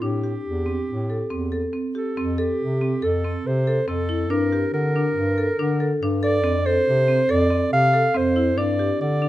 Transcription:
0.02 0.37 A2 medium
0.02 0.13 D4 medium
0.02 1.74 G4 medium
0.24 0.46 G4 medium
0.45 0.80 E2 medium
0.66 0.88 C4 medium
0.88 1.23 A2 medium
1.10 1.21 A4 medium
1.31 1.66 E2 medium
1.31 1.42 C4 medium
1.52 1.63 A4 medium
1.73 1.84 C4 medium
1.95 2.06 G4 medium
1.95 2.41 A4 medium
2.17 2.52 F2 medium
2.17 2.28 C4 medium
2.38 3.06 G4 medium
2.38 2.60 A4 medium
2.61 2.95 C3 medium
2.81 2.92 C4 medium
3.02 3.37 F2 medium
3.02 3.13 A4 medium
3.02 3.48 A4 medium
3.24 3.46 C4 medium
3.46 3.80 C3 medium
3.46 3.88 C5 medium
3.67 3.78 A4 medium
3.88 4.33 F2 medium
3.88 3.99 C4 medium
3.88 4.32 A4 medium
4.09 4.20 E4 medium
4.30 4.65 G2 medium
4.30 4.41 D4 medium
4.30 4.73 A#4 medium
4.52 4.74 G4 medium
4.73 5.08 D3 medium
4.73 5.97 A#4 medium
4.96 5.17 D4 medium
5.15 5.50 G2 medium
5.38 5.49 A4 medium
5.58 5.93 D3 medium
5.58 5.70 D4 medium
5.80 5.91 A4 medium
6.01 6.46 G2 medium
6.01 6.13 D4 medium
6.23 6.34 A4 medium
6.23 6.68 D5 medium
6.44 6.79 F2 medium
6.44 6.55 C4 medium
6.66 6.88 A4 medium
6.66 7.32 C5 medium
6.88 7.22 C3 medium
7.08 7.19 C4 medium
7.29 7.64 F2 medium
7.29 7.40 A4 medium
7.29 7.73 D5 medium
7.50 7.73 C4 medium
7.73 8.07 C3 medium
7.73 8.18 F5 loud
7.93 8.04 A4 medium
8.14 8.59 F2 medium
8.14 8.26 C4 medium
8.14 8.60 C5 medium
8.36 8.47 E4 medium
8.57 8.92 G2 medium
8.57 8.69 D4 medium
8.57 9.00 D5 medium
8.79 9.01 G4 medium
9.00 9.29 D3 medium
9.00 9.29 D5 medium
9.22 9.29 D4 medium

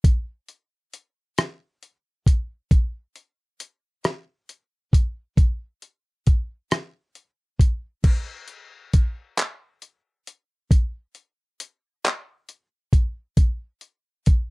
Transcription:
0.04 kick loud
0.04 closed hi-hat medium
0.48 closed hi-hat soft
0.94 closed hi-hat medium
1.38 cross-stick medium
1.38 closed hi-hat medium
1.83 closed hi-hat soft
2.26 kick medium
2.26 closed hi-hat medium
2.71 kick loud
2.71 closed hi-hat medium
3.16 closed hi-hat soft
3.60 closed hi-hat medium
4.04 cross-stick medium
4.04 closed hi-hat medium
4.49 closed hi-hat soft
4.93 kick medium
4.93 closed hi-hat medium
5.37 kick medium
5.37 closed hi-hat medium
5.82 closed hi-hat soft
6.27 kick medium
6.27 closed hi-hat medium
6.71 cross-stick medium
6.71 closed hi-hat medium
7.15 closed hi-hat soft
7.59 kick medium
7.59 closed hi-hat medium
8.04 kick loud
8.04 closed hi-hat medium
8.04 crash medium
8.48 closed hi-hat medium
8.93 kick medium
8.93 closed hi-hat medium
9.38 clap loud
9.38 closed hi-hat medium
9.82 closed hi-hat soft
10.27 closed hi-hat medium
10.71 kick loud
10.71 closed hi-hat medium
11.15 closed hi-hat medium
11.60 closed hi-hat medium
12.05 clap loud
12.05 closed hi-hat medium
12.49 closed hi-hat medium
12.93 kick medium
12.93 closed hi-hat medium
13.37 kick loud
13.37 closed hi-hat medium
13.81 closed hi-hat soft
14.26 kick medium
14.26 closed hi-hat medium

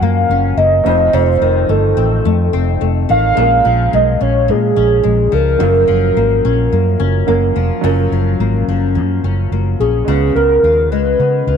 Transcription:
0.00 0.86 F#2 medium
0.00 0.24 F#2 medium
0.00 1.41 F3 medium
0.00 0.82 F#3 medium
0.00 0.80 A#3 medium
0.00 0.56 A#3 medium
0.00 0.29 C#4 medium
0.00 0.81 C#4 medium
0.00 0.83 C#5 medium
0.00 0.59 F5 loud
0.29 0.52 F#1 medium
0.29 0.93 C#4 medium
0.57 0.80 F#1 medium
0.57 0.92 A#3 medium
0.57 1.16 D#5 loud
0.84 1.08 F1 loud
0.84 1.12 F2 medium
0.84 3.04 A3 medium
0.84 3.05 C4 medium
0.84 3.05 D#4 medium
0.84 3.06 F4 medium
0.89 3.07 C5 medium
1.13 1.36 F1 loud
1.13 3.37 F2 medium
1.13 1.72 C5 loud
1.41 1.64 F1 loud
1.41 3.08 D#3 medium
1.69 1.92 G1 medium
1.69 2.24 A3 medium
1.69 2.54 A4 medium
1.97 2.20 A1 medium
1.97 2.52 C4 medium
2.25 2.48 F2 loud
2.25 2.80 A3 medium
2.53 2.76 F1 loud
2.53 3.44 C4 medium
2.81 3.04 F1 medium
2.81 3.44 A3 medium
3.09 3.32 A1 medium
3.09 3.44 D#3 medium
3.09 3.89 F5 loud
3.35 3.60 A#1 loud
3.35 5.60 A#2 medium
3.35 5.55 G#3 medium
3.35 5.56 A#3 medium
3.35 5.57 C#4 medium
3.35 5.57 F4 medium
3.40 5.58 A#4 medium
3.65 3.88 A#1 loud
3.65 5.32 F3 medium
3.93 4.15 B1 medium
3.93 4.47 G#3 medium
3.93 4.20 D#5 loud
4.21 4.50 A#1 medium
4.21 4.76 C#4 medium
4.21 4.52 C#5 loud
4.48 4.71 A#2 loud
4.48 5.02 G#3 medium
4.48 5.36 G#4 loud
4.76 4.99 A#1 medium
4.76 6.44 C#4 medium
5.04 5.27 A#1 loud
5.04 5.67 G#3 medium
5.32 5.55 C#2 medium
5.32 5.87 F3 medium
5.32 7.29 A#4 loud
5.59 5.83 F#1 loud
5.59 7.83 F#2 medium
5.59 7.24 F#3 medium
5.59 7.24 A#3 medium
5.59 7.25 C#4 medium
5.59 7.25 F4 medium
5.63 7.26 A#4 medium
5.88 6.11 F#1 medium
5.88 7.55 F3 medium
6.17 6.39 G#1 medium
6.17 6.72 A#3 medium
6.45 6.67 A#1 medium
6.45 6.99 C#4 medium
6.72 6.95 F#2 loud
6.72 7.27 A#3 medium
7.00 7.22 F#1 medium
7.00 7.84 C#4 medium
7.27 7.50 F#1 medium
7.27 7.80 F#3 medium
7.27 8.40 A#3 medium
7.27 7.84 A#3 medium
7.27 7.81 C#4 medium
7.27 7.83 F4 medium
7.27 7.85 A#4 medium
7.56 7.69 F1 medium
7.56 8.12 F3 medium
7.81 8.06 F#1 medium
7.81 10.07 F#2 medium
7.81 10.02 F#3 medium
7.81 10.03 C#4 medium
7.81 9.24 C#4 medium
7.81 10.03 F4 medium
7.86 10.04 A#4 medium
8.12 8.34 F#1 medium
8.12 8.68 F3 medium
8.40 8.62 G#1 medium
8.40 8.94 A#3 medium
8.68 8.97 F#1 medium
8.68 10.39 F3 medium
8.95 9.18 F#2 medium
8.95 9.51 A#3 medium
9.24 9.46 F#1 medium
9.24 9.80 C#4 medium
9.51 9.74 F#1 medium
9.51 10.14 A#3 medium
9.80 10.02 A#1 medium
9.80 10.39 C#4 medium
9.80 10.32 G#4 loud
10.05 10.30 C#2 loud
10.05 11.57 C#3 medium
10.05 11.57 G#3 medium
10.05 11.57 C#4 medium
10.05 11.57 F4 medium
10.10 11.57 B3 medium
10.35 10.58 C#2 medium
10.35 11.18 B3 medium
10.35 10.87 A#4 loud
10.63 10.91 D#2 medium
10.63 11.47 F4 medium
10.90 11.14 C#2 medium
10.90 11.57 G#3 medium
10.90 11.57 B4 loud
11.19 11.42 C#3 medium
11.19 11.57 B3 medium
11.47 11.57 C#2 medium
11.47 11.57 F4 medium

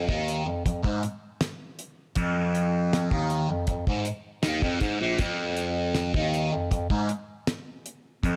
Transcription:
0.08 0.44 D#2 medium
0.08 0.45 D#3 loud
0.08 kick loud
0.28 closed hi-hat medium
0.46 0.64 F2 medium
0.46 0.65 F2 medium
0.66 0.83 F2 medium
0.66 kick medium
0.66 closed hi-hat medium
0.83 1.02 G#2 medium
0.83 kick loud
1.03 closed hi-hat medium
1.41 snare loud
1.41 closed hi-hat medium
1.79 closed hi-hat medium
2.15 3.07 F2 medium
2.15 3.11 F2 loud
2.15 kick loud
2.15 closed hi-hat medium
2.55 closed hi-hat medium
2.93 snare medium
2.93 closed hi-hat medium
3.11 3.47 D#2 medium
3.11 3.49 D#3 medium
3.11 kick medium
3.30 closed hi-hat medium
3.49 3.67 F2 medium
3.67 3.87 F2 medium
3.67 3.86 F2 medium
3.67 kick medium
3.67 closed hi-hat medium
3.87 4.05 G#2 medium
3.87 4.06 G#2 medium
3.87 kick loud
4.05 closed hi-hat medium
4.43 4.61 D#2 medium
4.43 4.62 D#3 medium
4.43 snare loud
4.43 closed hi-hat medium
4.62 4.80 F2 medium
4.62 4.81 F2 medium
4.62 kick medium
4.62 snare soft
4.80 4.99 G#2 medium
4.80 5.00 G#2 loud
4.80 kick medium
4.80 closed hi-hat medium
5.00 5.18 A#1 medium
5.00 5.19 A#2 medium
5.18 6.13 F2 medium
5.18 6.11 F2 medium
5.18 kick loud
5.18 closed hi-hat medium
5.57 closed hi-hat medium
5.95 snare medium
5.95 closed hi-hat medium
6.14 6.50 D#2 medium
6.14 6.52 D#3 loud
6.14 kick loud
6.34 closed hi-hat medium
6.52 6.70 F2 medium
6.71 6.90 F2 medium
6.71 6.89 F2 medium
6.71 kick medium
6.71 closed hi-hat medium
6.90 7.08 G#2 medium
6.90 7.09 G#2 medium
6.90 kick loud
7.09 closed hi-hat medium
7.47 snare loud
7.47 closed hi-hat medium
7.86 closed hi-hat medium
8.23 8.36 F2 loud
8.23 8.36 F2 medium
8.23 kick loud
8.23 closed hi-hat loud

